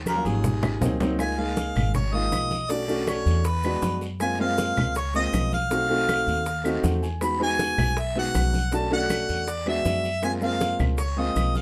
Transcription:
Already playing: D#2
0.06 F#2 A#4, high bongo, high conga, short guiro, claves, maracas
0.15 F#3 A#3 C#4 F4
0.25 G#1 D#2 G#4, high bongo, high conga, short guiro, maracas
0.44 high bongo, low conga, long guiro, maracas
0.63 high bongo, low conga, claves, maracas
0.81 C#2 F#3 A#3 C4 D#4, high bongo, low bongo, low conga, short guiro, maracas
1.00 F#3 A#3 C4 D#4, high bongo, low conga, short guiro, maracas
1.18 G#3 A#3 D#4 F4 G#5, high bongo, high conga, long guiro, claves, maracas
1.38 G#3 A#3 D#4 G#4 F5, high bongo, high conga
1.57 high bongo, high conga, short guiro, maracas
1.75 G#1, high bongo, high conga, low conga, short guiro, claves, maracas
1.94 C#5, high bongo, high conga, low conga, long guiro, maracas
2.13 G#3 A#3 D#4 F4 D#5, high conga
2.32 B1, high bongo, low bongo, high conga, short guiro, claves, maracas
2.51 high bongo, high conga, short guiro, maracas
2.69 A3 C#4 D4 F#4 D5, high bongo, high conga, long guiro, maracas
2.88 A3 C#4 D4 F#4, high bongo, high conga, maracas
3.07 C#5, high bongo, high conga, short guiro, claves, maracas
3.26 E2, high bongo, high conga, short guiro, maracas
3.44 B4, high bongo, high conga, long guiro, maracas
3.63 G#3 B3 D4 F#4, high conga, claves, maracas
3.82 F#2, high bongo, low bongo, high conga, short guiro, maracas
4.01 high bongo, high conga, short guiro, maracas
4.20 G#3 A#3 C4 F4 G#5, high bongo, high conga, long guiro, claves, maracas
4.39 G#3 A#3 C4 F4 F5, high bongo, high conga
4.58 high bongo, high conga, short guiro, maracas
4.76 C#2, high bongo, high conga, low conga, short guiro, claves, maracas
4.95 C#5, high bongo, high conga, long guiro, maracas
5.14 G#3 A#3 C4 F4 D#5, high conga, maracas
5.33 B1, high bongo, low bongo, high conga, short guiro, claves, maracas
5.52 F5, high bongo, high conga, short guiro, maracas
5.70 A3 C4 D#4 F#4, high bongo, long guiro, maracas
5.89 A3 C4 D#4 F#4, high bongo, high conga
6.09 high bongo, high conga, short guiro, claves, maracas
6.27 D#2, high bongo, high conga, short guiro, maracas
6.46 high bongo, high conga, long guiro, maracas
6.64 A3 C4 D#4 F#4 D#5, high conga, claves, maracas
6.83 E2 F#5, high bongo, low bongo, high conga, short guiro, maracas
7.03 G#5, high bongo, short guiro, maracas
7.21 G#3 B3 D#4 F#4 B5, high bongo, high conga, long guiro, claves, maracas
7.39 G#3 B3 D#4 F#4 G#5, high bongo, high conga
7.59 high bongo, high conga, short guiro, maracas
7.78 B1, high bongo, high conga, low conga, short guiro, claves, maracas
7.97 E5, high bongo, high conga, long guiro, maracas
8.15 G#3 B3 D#4 F#4 F#5, high conga
8.34 B1, high bongo, low bongo, high conga, short guiro, claves, maracas
8.53 high bongo, high conga, short guiro, maracas
8.72 A3 C#4 D4 F#4 A5, high bongo, long guiro, maracas
8.91 A3 C#4 D4 F#4 F#5, high bongo, high conga
9.10 high bongo, high conga, short guiro, claves, maracas
9.28 E2, high bongo, high conga, short guiro, maracas
9.48 D5, high bongo, high conga, long guiro, maracas
9.66 G#3 B3 D4 F#4 E5, high conga, claves
9.85 F#2, high bongo, low bongo, high conga, short guiro, maracas
10.04 high bongo, high conga, short guiro, maracas
10.22 G#3 A#3 C4 F4 G#5, high bongo, high conga, long guiro, claves, maracas
10.41 G#3 A#3 C4 F4 F5, high bongo, high conga, maracas
10.60 high bongo, high conga, short guiro, maracas
10.79 C#2, high bongo, high conga, low conga, short guiro, claves, maracas
10.98 C#5, high bongo, long guiro, maracas
11.17 G#3 A#3 C4 F4 D#5, high conga
11.36 B1, high bongo, low bongo, high conga, short guiro, claves, maracas
11.55 F5, high bongo, high conga, short guiro, maracas

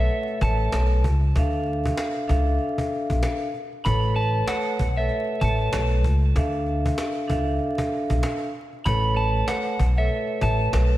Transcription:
Already playing: A3
0.00 A4 B4 C#5 E5
0.09 cajon slap
0.27 cajon slap
0.41 A1 A3 A4 B4 C#5 A5, cajon bass
0.60 cajon slap
0.73 B1, cajon slap
0.93 cajon slap
1.04 C#2, cajon bass
1.23 cajon slap
1.36 D2 D4 A4 E5 F5, cajon bass
1.54 cajon slap
1.66 cajon slap
1.85 cajon bass
1.97 cajon slap
2.16 cajon slap
2.28 C#2 D4 A4 E5 F5, cajon bass
2.49 cajon slap
2.59 cajon slap
2.78 cajon bass
2.93 cajon slap
3.10 B1, cajon bass
3.23 cajon slap
3.43 cajon slap
3.54 cajon slap
3.73 cajon slap
3.85 A1 A3 A4 B4 C#5 B5, cajon bass
4.04 cajon slap
4.14 A3 A4 B4 C#5 A5, cajon slap
4.35 cajon slap
4.48 F#5, cajon slap
4.66 cajon slap
4.79 B1, cajon bass
4.97 A3 A4 B4 C#5 E5, cajon slap
5.09 cajon slap
5.27 cajon slap
5.41 A1 A3 A4 B4 C#5 A5, cajon bass
5.60 cajon slap
5.73 B1, cajon slap
5.93 cajon slap
6.04 C#2, cajon bass
6.23 cajon slap
6.36 D2 D4 A4 E5 F5, cajon bass
6.54 cajon slap
6.67 cajon slap
6.86 cajon bass
6.98 cajon slap
7.16 cajon slap
7.28 C#2 D4 A4 E5 F5, cajon bass
7.49 cajon slap
7.59 cajon slap
7.78 cajon bass
7.93 cajon slap
8.10 B1, cajon bass
8.23 cajon slap
8.43 cajon slap
8.54 cajon slap
8.73 cajon slap
8.85 A1 A3 A4 B4 C#5 B5, cajon bass
9.04 cajon slap
9.14 A3 A4 B4 C#5 A5, cajon slap
9.35 cajon slap
9.48 F#5, cajon slap
9.66 cajon slap
9.79 B1, cajon bass
9.98 A3 A4 B4 C#5 E5, cajon slap
10.09 cajon slap
10.28 cajon slap
10.41 A1 A3 A4 B4 C#5 A5, cajon bass
10.60 cajon slap
10.73 B1, cajon slap
10.93 cajon slap

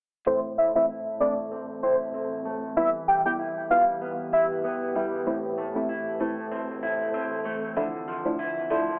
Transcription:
0.26 A2 E3 A3 C4 E4 A4 C5
0.58 A3 E5
0.75 E3 A3 C4 E4 E5
0.89 E4
1.20 E3 A3 C4 E4 D5
1.52 C4
1.83 E4 C5
2.14 C4
2.45 A3
2.76 E2 E3 G3 B3 E4 G4 E5
3.08 G3 G5
3.25 E3 G3 B3 E4 G5
3.39 E4
3.70 E3 G3 B3 E4 F5
4.01 B3
4.33 E4 E5
4.64 B3
4.95 E3 G3 B3 E4
5.26 A2 E3 A3 C4 E4 A4
5.58 A3
5.75 E3 A3 C4 E4
5.89 E4
6.20 E3 A3 C4 E4
6.51 C4
6.83 E4
7.14 C4
7.45 A3
7.76 D2 D3 F3 A3 D4 E4
8.08 F3
8.25 F3 A3 D4 E4
8.39 E4
8.70 F3 A3 D4 E4

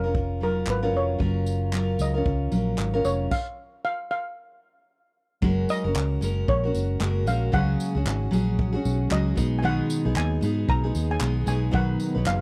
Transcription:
Already playing: F1 A#4
0.04 C#4 F4 A#4
0.15 kick
0.41 F#3 C#4 F4 A#4
0.67 G#1 B4, clap
0.83 F#3 C#4 F4 A#4
0.94 F1 C#5
1.19 F#1 F#3 C#4 F4 A#4, kick
1.46 tambourine
1.72 F#3 C#4 F4 A#4, clap
1.99 C#2 D#5, tambourine
2.14 C#4 F4 A#4
2.26 C#2, kick
2.52 A#1 F#3 C#4 F4 A#4, tambourine
2.78 G#1, clap
2.94 F#3 C#4 F4 A#4
3.05 F1 C#5, tambourine
3.31 F5, kick, crash
3.85 F5
4.11 F5
5.42 F#1 C#3 F#3 G#3 A#3 C#4 F#4 A#4, kick
5.69 D#5, tambourine
5.84 F#1 C#4 F#4 A#4
5.95 C#2, clap
6.21 F#1 G#3 C#4 F#4 A#4, tambourine
6.48 A#1 C#5, kick
6.63 C#4 F#4 A#4
6.74 F#1, tambourine
7.00 F#1 G#3 C#4 F#4 A#4, clap
7.26 A#1 G#3 C#4 F#4 A#4 F5, tambourine
7.52 C#2 C#3 F#3 C#4 F#4 G#4 F#5, kick
7.80 tambourine
7.95 C#2 C#4 F#4 G#4
8.06 G#1, clap
8.31 A#1 F#3 C#4 F#4 G#4, tambourine
8.59 kick
8.72 C#4 F#4 G#4
8.85 B1, tambourine
9.10 C#2 F#3 C#4 F#4 G#4 D#5, clap
9.35 B1 D#3 G#3 B3 D#4 G#4, kick, tambourine
9.59 B2 G#5
9.63 D#3 G#3 B3 D#4 G#4 F#5
9.90 tambourine
10.05 B1 G#3 B3 D#4 G#4
10.16 D#2 G#5, clap
10.41 G#2 G#3 B3 D#4 G#4, tambourine
10.69 B1 A#5, kick
10.84 G#3 B3 D#4 G#4
10.95 D#2, tambourine
11.11 G#5
11.19 B1 G#3 B3 D#4 G#4, clap
11.46 B1 G#3 B3 D#4 G#4 G#5, tambourine
11.71 B1 B2 D#3 F#3 B3 D#4 F#4 B4 F#5, kick
12.00 tambourine
12.15 B1 F#3 B3 D#4 B4
12.26 F#1 F5, clap

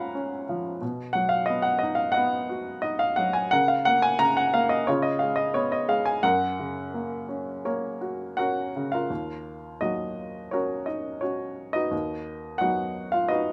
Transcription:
Already playing: A#2 F3 C#4 F4 C#5 F5 F#5 G#5 A#5 B5
0.15 C#4
0.49 F3
0.81 B2
1.13 F#3 F#5
1.29 F5
1.46 B3 D#5
1.62 F#5
1.79 D#5
1.83 D#4
1.95 F5
2.12 D#5 F#5
2.17 B3
2.50 F#4
2.82 D#4 D#5
2.99 F5
3.16 F#3 F#5
3.33 G#5
3.51 C#3 A#4 F#5
3.68 F5
3.85 A#3 F#5
4.02 G#5
4.19 C#3 A#5
4.37 F#5
4.54 A#3 F5
4.69 D#5
4.87 C#3 F4 C#5
5.02 D#5
5.19 G#3 F5
5.36 D#5
5.54 B3 C#5
5.72 D#5
5.88 G#3 F5
6.05 G#5
6.23 F#2 A#4 F#5
6.59 C#3
6.94 A#3
7.29 C#4
7.65 A#3 A#4 C#5
8.01 F#4
8.37 C#4 F#4 A#4 F#5
8.76 C#3
8.92 F4 A#4 F5
9.10 D#2
9.81 F#3 A#3 D#4 F#4 D#5
10.51 C#4 F#4 A#4 C#5
10.86 D#4 D#5
11.21 C#4 F#4 C#5
11.73 D#4 F#4 B4 D#5
11.91 D#2
12.58 F#3 B3 D#4 F#4 D#5 F#5
13.12 F4 F5
13.28 D#4 F#4 B4 D#5

